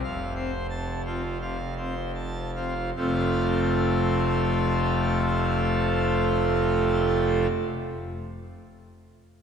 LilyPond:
<<
  \new Staff \with { instrumentName = "Pipe organ" } { \time 4/4 \key f \major \tempo 4 = 74 << { f''8 c''8 a''8 f'8 f''8 c''8 a''8 f'8 | <f, c a c' f' a'>1~ | <f, c a c' f' a'>1 | } \\ { f,8 c'16 r8. c'16 r16 c16 r16 c'16 r8. c'16 r16 | r1 | r1 | } >> }
  \new Staff \with { instrumentName = "Pipe organ" } { \clef bass \time 4/4 \key f \major f,,1 | f,,1~ | f,,1 | }
>>